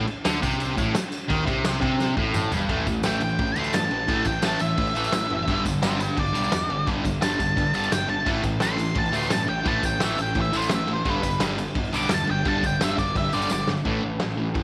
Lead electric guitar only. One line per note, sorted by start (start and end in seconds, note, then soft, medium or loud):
3.06 3.22 G5 medium
3.23 3.58 G5 medium
3.58 3.74 C6 medium
3.74 4.24 A5 medium
4.27 4.45 G5 medium
4.45 4.61 A5 loud
4.61 5.62 E5 loud
5.82 6.00 G4 medium
5.82 6.00 E5 loud
6.01 6.17 B4 medium
6.01 6.18 G5 medium
6.19 6.86 D5 loud
7.22 7.73 A5 loud
7.75 7.92 A5 medium
7.92 8.09 G5 loud
8.10 8.27 A5 loud
8.63 8.96 C6 loud
8.99 9.15 A5 loud
9.16 9.32 C6 loud
9.32 9.49 A5 loud
9.49 9.68 G5 medium
9.68 9.85 A5 loud
9.85 10.01 G5 loud
10.04 10.20 E5 loud
10.22 10.37 G5 loud
10.41 10.56 E5 loud
10.57 10.72 C5 loud
10.75 10.90 E5 loud
10.93 11.08 C5 medium
11.10 11.42 B4 loud
11.96 12.12 D6 loud
12.14 12.29 A5 loud
12.31 12.46 G5 loud
12.48 12.66 A5 loud
12.66 12.81 G5 loud
12.84 12.98 E5 loud
12.99 13.15 D5 medium
13.17 13.34 E5 loud
13.34 13.50 D5 loud
13.53 13.68 D5 loud